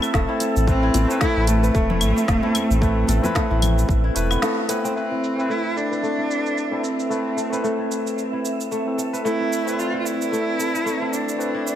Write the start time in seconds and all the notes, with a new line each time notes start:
Already playing: A3 C4 E4 A4 B4 E5 B5 A6
0.02 B4, cabasa, claves
0.14 E1 A3, kick, snare, cabasa
0.28 A3 C4 E4 A4
0.40 closed hi-hat, high bongo, cabasa
0.56 A1, cabasa
0.67 A3 C4 E4 B4, kick, cabasa
0.83 E4
0.94 A1, closed hi-hat, high bongo, high conga, cabasa
1.08 A3 C4 E4, high bongo, cabasa
1.12 B4
1.21 A3 E4, kick, snare, cabasa
1.36 A1
1.47 A3 A4, closed hi-hat, cabasa
1.63 B4, cabasa
1.74 E1 A3, kick, cabasa
1.90 E4, low conga
2.01 A1, closed hi-hat, cabasa, claves
2.16 high bongo, cabasa
2.28 E1, kick, snare, cabasa
2.42 A3 C4 E4 A4, high bongo, high conga
2.55 closed hi-hat, high conga, cabasa, claves
2.70 A1, cabasa
2.81 A3 C4 E4 B4, kick, cabasa
3.07 A1 A4, closed hi-hat, high bongo, high conga, cabasa
3.22 A3 C4 E4 B4, high bongo, high conga, low conga, cabasa
3.35 A3, kick, snare, cabasa
3.50 A1 E4, high conga
3.62 closed hi-hat, low conga, cabasa, claves
3.79 cabasa
3.89 A1, kick, cabasa
4.04 E4
4.15 E1 A3 E4 B4, closed hi-hat, cabasa
4.31 B3, snare, cabasa, claves
4.42 A3, snare, cabasa
4.68 A3 B3 C4 E4 B4, closed hi-hat, high bongo, cabasa
4.84 C4, cabasa
4.95 A3 C4 E4 A4 B4 E5, cabasa
5.11 E4
5.24 cabasa
5.37 A3 C4 E4, cabasa
5.41 B4
5.49 A3 E4, cabasa
5.76 D4 A4, cabasa
5.91 B4, cabasa
6.03 A3, cabasa
6.18 E4
6.31 cabasa
6.46 cabasa
6.58 cabasa
6.71 A3 C4 E4 A4
6.83 C4, cabasa
7.00 cabasa
7.09 A3 C4 E4 B4, cabasa
7.37 A4, cabasa
7.50 A3 C4 E4 B4, cabasa
7.54 B4
7.64 A3, cabasa
7.79 E4
7.92 cabasa
8.07 cabasa
8.18 cabasa
8.33 E4
8.45 cabasa
8.61 cabasa
8.71 A3, cabasa
8.86 A3 C4 E4 A4
8.98 A4, cabasa
9.13 B4, cabasa
9.24 A3 C4 E4 B4 D5, cabasa
9.40 E4
9.53 cabasa
9.65 A3 C4 E4 B4, cabasa
9.79 F4, cabasa
9.94 E4
9.99 F4
10.05 E4, cabasa
10.22 cabasa
10.32 A3, cabasa
10.59 A4, cabasa
10.74 B4, cabasa
10.86 A3, cabasa
11.00 A3 C4 E4 A4
11.12 D4, cabasa
11.29 cabasa
11.38 A3 C4 E4 B4, cabasa
11.54 E4
11.67 cabasa